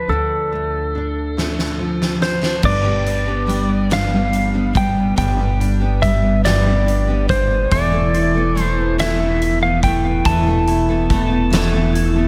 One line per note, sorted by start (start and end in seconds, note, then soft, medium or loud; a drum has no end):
0.00 1.78 F3 soft
0.00 0.51 A3 medium
0.00 0.11 B4 medium
0.08 2.59 D2 medium
0.08 3.59 D3 medium
0.08 0.95 D4 medium
0.08 2.17 A4 medium
0.53 1.36 A3 soft
0.95 2.20 D4 soft
1.37 2.72 A3 soft
1.37 snare soft
1.59 snare soft
1.79 2.72 F3 soft
2.02 snare soft
2.21 2.41 C4 soft
2.21 2.65 C5 medium
2.21 snare medium
2.41 2.63 D4 soft
2.41 snare medium
2.62 5.14 G1 medium
2.62 2.84 G2 medium
2.62 2.84 D3 medium
2.62 2.84 G3 medium
2.62 2.84 B3 medium
2.62 2.83 D4 medium
2.62 2.82 G4 medium
2.62 3.93 D5 medium
2.62 kick medium
2.62 crash medium
2.83 3.28 G3 soft
2.83 3.27 B3 soft
2.83 3.26 D4 soft
2.83 3.25 G4 soft
3.04 3.90 D4 soft
3.04 closed hi-hat soft
3.26 3.46 G3 soft
3.26 3.47 B3 soft
3.26 3.48 D4 soft
3.26 3.48 G4 soft
3.47 3.89 G3 medium
3.47 3.90 B3 medium
3.47 3.90 D4 medium
3.47 3.91 G4 medium
3.47 closed hi-hat soft
3.69 4.55 B3 soft
3.90 4.11 G2 medium
3.90 4.11 D3 medium
3.90 4.12 G3 medium
3.90 4.12 B3 medium
3.90 4.10 D4 medium
3.90 4.09 G4 medium
3.90 4.72 F5 medium
3.90 snare medium
3.90 closed hi-hat medium
4.10 4.54 G3 soft
4.10 4.54 B3 soft
4.10 4.53 D4 soft
4.10 4.52 G4 soft
4.33 5.16 D4 medium
4.33 closed hi-hat soft
4.53 4.72 G3 soft
4.53 4.73 B3 soft
4.53 4.74 D4 soft
4.53 4.75 G4 soft
4.73 5.16 G3 soft
4.73 5.16 B3 medium
4.73 5.17 D4 medium
4.73 5.17 G4 medium
4.73 5.17 G5 medium
4.73 kick medium
4.73 closed hi-hat soft
4.97 5.81 B3 soft
5.16 7.68 G1 medium
5.16 5.38 G2 medium
5.16 5.38 D3 medium
5.16 5.38 G3 medium
5.16 5.39 B3 medium
5.16 5.38 D4 medium
5.16 5.37 G4 medium
5.16 6.05 G5 medium
5.16 kick loud
5.16 closed hi-hat medium
5.38 5.82 G3 soft
5.38 5.81 B3 soft
5.38 5.80 D4 soft
5.38 5.79 G4 soft
5.60 6.45 D4 medium
5.60 closed hi-hat soft
5.80 6.00 G3 soft
5.80 6.01 B3 soft
5.80 6.02 D4 soft
5.80 6.02 G4 soft
6.01 6.44 G3 soft
6.01 6.44 B3 medium
6.01 6.44 D4 medium
6.01 6.45 G4 medium
6.01 6.45 E5 medium
6.01 kick medium
6.01 closed hi-hat soft
6.23 7.07 B3 soft
6.44 6.65 G2 medium
6.44 6.66 D3 medium
6.44 6.66 G3 medium
6.44 6.66 B3 medium
6.44 6.65 D4 medium
6.44 6.64 G4 medium
6.44 7.29 D5 medium
6.44 snare medium
6.44 closed hi-hat medium
6.65 7.09 G3 soft
6.65 7.09 B3 soft
6.65 7.08 D4 soft
6.65 7.06 G4 soft
6.86 7.71 D4 medium
6.86 closed hi-hat soft
7.08 7.27 G3 soft
7.08 7.30 B3 soft
7.08 7.29 D4 soft
7.08 7.29 G4 soft
7.28 7.71 G3 soft
7.28 7.72 D4 medium
7.28 7.72 G4 medium
7.28 7.73 C5 medium
7.28 kick medium
7.28 closed hi-hat soft
7.51 7.95 B3 medium
7.71 10.21 E1 medium
7.71 7.93 E2 medium
7.71 7.93 B2 medium
7.71 7.93 E3 medium
7.71 7.93 A3 medium
7.71 7.92 B3 medium
7.71 8.13 E4 medium
7.71 7.91 A4 medium
7.71 8.61 D5 medium
7.71 kick loud
7.71 closed hi-hat medium
7.92 8.36 E3 soft
7.92 8.36 A3 soft
7.92 8.35 B3 soft
7.92 8.34 A4 soft
8.14 8.99 E4 medium
8.14 closed hi-hat soft
8.35 8.54 E3 soft
8.35 8.55 A3 soft
8.35 8.56 B3 soft
8.35 8.56 A4 soft
8.56 8.98 E3 medium
8.56 8.98 A3 medium
8.56 8.99 B3 medium
8.56 8.99 A4 medium
8.56 closed hi-hat soft
8.61 9.00 C5 medium
8.78 9.62 B3 soft
8.98 9.19 E2 medium
8.98 9.20 B2 medium
8.98 9.20 E3 medium
8.98 9.20 A3 medium
8.98 9.19 B3 medium
8.98 9.41 E4 medium
8.98 9.17 A4 medium
8.98 9.62 E5 loud
8.98 snare loud
8.98 closed hi-hat medium
9.19 9.63 E3 soft
9.19 9.63 A3 soft
9.19 9.61 B3 medium
9.19 9.60 A4 medium
9.41 10.26 E4 medium
9.41 closed hi-hat soft
9.61 9.81 E3 soft
9.61 9.82 A3 soft
9.61 9.83 B3 soft
9.61 9.83 A4 soft
9.61 9.83 F5 medium
9.82 10.25 E3 medium
9.82 10.26 A3 medium
9.82 10.26 B3 medium
9.82 10.26 A4 medium
9.82 10.27 G5 loud
9.82 kick medium
9.82 closed hi-hat medium
10.04 10.88 B3 medium
10.25 12.28 E1 loud
10.25 10.46 E2 medium
10.25 10.47 B2 medium
10.25 10.47 E3 medium
10.25 10.47 A3 medium
10.25 10.46 B3 medium
10.25 10.68 E4 medium
10.25 10.45 A4 medium
10.25 12.28 A5 loud
10.25 kick loud
10.25 closed hi-hat medium
10.46 10.90 E3 soft
10.46 10.89 A3 soft
10.46 10.89 B3 soft
10.46 10.87 A4 soft
10.67 11.51 E4 medium
10.67 closed hi-hat soft
10.89 11.09 E3 soft
10.89 11.10 A3 soft
10.89 11.11 B3 soft
10.89 11.10 A4 soft
11.10 11.52 E3 medium
11.10 11.53 A3 medium
11.10 11.53 B3 medium
11.10 11.53 A4 medium
11.10 kick medium
11.10 closed hi-hat soft
11.30 12.14 B3 medium
11.51 11.74 E2 medium
11.51 11.74 B2 medium
11.51 11.74 E3 loud
11.51 11.74 A3 medium
11.51 11.74 B3 medium
11.51 11.92 E4 medium
11.51 11.72 A4 loud
11.51 snare loud
11.51 closed hi-hat loud
11.74 12.17 E3 medium
11.74 12.17 A3 medium
11.74 12.15 B3 medium
11.74 12.15 A4 medium
11.92 12.28 E4 medium
11.92 closed hi-hat soft
12.16 12.28 E3 soft
12.16 12.28 A3 soft
12.16 12.28 B3 soft
12.16 12.28 A4 soft